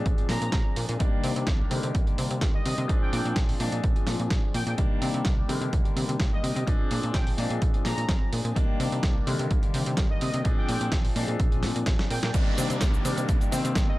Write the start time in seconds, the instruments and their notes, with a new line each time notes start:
Already playing: grand piano F3 G#3 C4 D4, clean electric guitar C4 D4 G#4
0.06 analog synth bass A#1, kick, closed hi-hat
0.18 analog synth bass A#2, clean electric guitar C4 D4 G#4, closed hi-hat
0.29 analog synth bass A#2, clean electric guitar F3 C4 D4 G#4, analog polysynth A#5, snare, open hi-hat
0.42 analog synth bass A#2, closed hi-hat
0.52 analog synth bass A#1, clean electric guitar F3 C4 D4 G#4, kick, snare, closed hi-hat
0.76 analog synth bass A#2, clean electric guitar F3 C4 D4 G#4, open hi-hat
0.89 analog synth bass A#2, clean electric guitar C4 D4 G#4, closed hi-hat
0.99 analog synth bass C2, grand piano D#3 G3 A#3 D4, clean electric guitar D#3 A#3 D4 G4, kick, closed hi-hat
1.13 analog synth bass C3
1.23 analog synth bass C3, clean electric guitar D#3 A#3 D4 G4, open hi-hat
1.36 analog synth bass C3, closed hi-hat
1.47 analog synth bass C2, clean electric guitar D4 G4, kick, snare, closed hi-hat
1.70 analog synth bass C3, grand piano D3 D#3 G3 A#3, open hi-hat
1.83 analog synth bass C3, clean electric guitar A#3 D4 G4, closed hi-hat
1.95 analog synth bass C2, kick, closed hi-hat
2.07 analog synth bass C3, clean electric guitar A#3 D4 G4, closed hi-hat
2.18 analog synth bass C3, clean electric guitar D#3 A#3 D4 G4, open hi-hat
2.31 analog synth bass C3, closed hi-hat
2.41 analog synth bass C2, clean electric guitar D#3 D4 G4, kick, snare, closed hi-hat
2.54 analog polysynth D#5
2.65 analog synth bass C3, clean electric guitar D#3 A#3 D4 G4, open hi-hat
2.77 analog synth bass C3, clean electric guitar A#3 D4 G4, closed hi-hat
2.88 analog synth bass A#1, grand piano F3 G#3 C4 D4, clean electric guitar F3 C4 D4 G#4, kick, closed hi-hat
3.01 analog synth bass A#2, analog polysynth G5
3.12 analog synth bass A#2, clean electric guitar F3 C4 D4 G#4, open hi-hat
3.25 analog synth bass A#2, closed hi-hat
3.36 analog synth bass A#1, clean electric guitar F3 C4 D4 G#4, kick, snare, closed hi-hat
3.49 open hi-hat
3.59 analog synth bass A#2, grand piano F3 G#3 C4 D4, open hi-hat
3.72 analog synth bass A#2, clean electric guitar C4 D4 G#4, closed hi-hat
3.84 analog synth bass A#1, kick, closed hi-hat
3.96 analog synth bass A#2, clean electric guitar C4 D4 G#4, closed hi-hat
4.07 analog synth bass A#2, clean electric guitar F3 C4 D4 G#4, snare, open hi-hat
4.20 analog synth bass A#2, closed hi-hat
4.30 analog synth bass A#1, clean electric guitar F3 C4 D4 G#4, kick, snare, closed hi-hat
4.54 analog synth bass A#2, clean electric guitar F3 C4 D4 G#4, analog polysynth G5, open hi-hat
4.67 analog synth bass A#2, clean electric guitar C4 D4 G#4, analog polysynth G5, closed hi-hat
4.78 analog synth bass C2, grand piano D#3 G3 A#3 D4, clean electric guitar D#3 A#3 D4 G4, kick, closed hi-hat
4.91 analog synth bass C3
5.01 analog synth bass C3, clean electric guitar D#3 A#3 D4 G4, open hi-hat
5.14 analog synth bass C3, closed hi-hat
5.25 analog synth bass C2, clean electric guitar D#3 A#3 D4 G4, kick, snare, closed hi-hat
5.48 analog synth bass C3, grand piano D3 D#3 G3 A#3, open hi-hat
5.61 analog synth bass C3, clean electric guitar A#3 D4 G4, closed hi-hat
5.73 analog synth bass C2, kick, closed hi-hat
5.85 analog synth bass C3, clean electric guitar A#3 D4 G4, closed hi-hat
5.96 analog synth bass C3, clean electric guitar D#3 A#3 D4 G4, open hi-hat
6.09 analog synth bass C3, closed hi-hat
6.20 analog synth bass C2, clean electric guitar D#3 A#3 D4 G4, kick, snare, closed hi-hat
6.33 analog polysynth D#5
6.43 analog synth bass C3, clean electric guitar D#3 A#3 D4 G4, open hi-hat
6.55 analog synth bass C3, clean electric guitar A#3 D4 G4, closed hi-hat
6.67 analog synth bass A#1, grand piano F3 G#3 C4 D4, clean electric guitar F3 C4 D4 G#4, kick, closed hi-hat
6.80 analog synth bass A#2
6.90 analog synth bass A#2, clean electric guitar F3 C4 D4 G#4, open hi-hat
7.03 analog synth bass A#2, closed hi-hat
7.14 analog synth bass A#1, clean electric guitar F3 C4 D4 G#4, analog polysynth G5, kick, snare, closed hi-hat
7.27 open hi-hat
7.37 analog synth bass A#2, grand piano F3 G#3 C4 D4, open hi-hat
7.50 analog synth bass A#2, clean electric guitar C4 D4 G#4, closed hi-hat
7.62 analog synth bass A#1, kick, closed hi-hat
7.74 analog synth bass A#2, clean electric guitar C4 D4 G#4, closed hi-hat
7.85 analog synth bass A#2, clean electric guitar F3 C4 D4 G#4, analog polysynth A#5, snare, open hi-hat
7.98 analog synth bass A#2, closed hi-hat
8.09 analog synth bass A#1, clean electric guitar C4 D4 G#4, kick, snare, closed hi-hat
8.32 analog synth bass A#2, clean electric guitar F3 C4 D4 G#4, open hi-hat
8.44 analog synth bass A#2, clean electric guitar C4 D4 G#4, closed hi-hat
8.56 analog synth bass C2, grand piano D#3 G3 A#3 D4, clean electric guitar D#3 A#3 D4 G4, kick, closed hi-hat
8.69 analog synth bass C3
8.79 analog synth bass C3, clean electric guitar D#3 A#3 D4 G4, open hi-hat
8.92 analog synth bass C3, closed hi-hat
9.03 analog synth bass C2, clean electric guitar D#3 A#3 D4 G4, kick, snare, closed hi-hat
9.26 analog synth bass C3, grand piano D3 D#3 G3 A#3, open hi-hat
9.39 analog synth bass C3, clean electric guitar A#3 D4 G4, closed hi-hat
9.51 analog synth bass C2, kick, closed hi-hat
9.63 analog synth bass C3, clean electric guitar A#3 D4 G4, closed hi-hat
9.74 analog synth bass C3, clean electric guitar D#3 A#3 D4 G4, open hi-hat
9.86 analog synth bass C3, closed hi-hat
9.97 analog synth bass C2, clean electric guitar D#3 A#3 D4 G4, kick, snare, closed hi-hat
10.10 analog polysynth D#5
10.21 analog synth bass C3, clean electric guitar D#3 A#3 D4 G4, open hi-hat
10.33 analog synth bass C3, clean electric guitar A#3 D4 G4, closed hi-hat
10.44 analog synth bass A#1, grand piano F3 G#3 C4 D4, clean electric guitar F3 C4 D4 G#4, kick, closed hi-hat
10.57 analog synth bass A#2, analog polysynth G5
10.68 analog synth bass A#2, clean electric guitar F3 C4 D4 G#4, open hi-hat
10.81 analog synth bass A#2, closed hi-hat
10.92 analog synth bass A#1, clean electric guitar D4 G#4, kick, snare, closed hi-hat
11.05 open hi-hat
11.15 analog synth bass A#2, grand piano F3 G#3 C4 D4, open hi-hat
11.28 analog synth bass A#2, clean electric guitar C4 D4 G#4, closed hi-hat
11.40 analog synth bass A#1, kick, closed hi-hat
11.51 clean electric guitar C4 D4 G#4, closed hi-hat
11.63 analog synth bass A#2, clean electric guitar F3 C4 D4 G#4, snare, open hi-hat
11.76 analog synth bass A#2, closed hi-hat
11.86 analog synth bass A#1, clean electric guitar F3 C4 D4 G#4, kick, snare, closed hi-hat
11.99 snare
12.10 analog synth bass A#2, clean electric guitar F3 C4 D4 G#4, analog polysynth G5, open hi-hat
12.22 analog synth bass A#2, clean electric guitar C4 D4 G#4, analog polysynth G5, snare, closed hi-hat
12.34 analog synth bass C2, grand piano D#3 G3 A#3 D4, clean electric guitar D#3 A#3 D4 G4, kick, closed hi-hat, crash, downlifter, cabasa
12.46 analog synth bass C3, clean electric guitar A#3 D4 G4
12.57 analog synth bass C3, clean electric guitar D#3 A#3 D4 G4, open hi-hat, cabasa
12.70 analog synth bass C3, clean electric guitar A#3 D4 G4, closed hi-hat, cabasa
12.81 analog synth bass C2, clean electric guitar D#3 A#3 D4 G4, kick, snare, closed hi-hat, cabasa
12.94 cabasa
13.04 analog synth bass C3, clean electric guitar D#3 A#3 D4 G4, grand piano D#3 G3 A#3 D4, open hi-hat, cabasa
13.17 analog synth bass C3, clean electric guitar A#3 D4 G4, closed hi-hat, cabasa
13.29 analog synth bass C2, kick, closed hi-hat, cabasa
13.40 analog synth bass C3, clean electric guitar A#3 D4 G4, closed hi-hat, cabasa
13.51 analog synth bass C3, grand piano D#3 G3 A#3 C4, clean electric guitar D#3 A#3 D4 G4, open hi-hat, cabasa
13.64 analog synth bass C3, clean electric guitar A#3 D4 G4, closed hi-hat, cabasa
13.75 analog synth bass C2, clean electric guitar D#3 A#3 D4 G4, kick, snare, closed hi-hat, cabasa
13.88 clean electric guitar A#3 D4 G4, analog polysynth D#5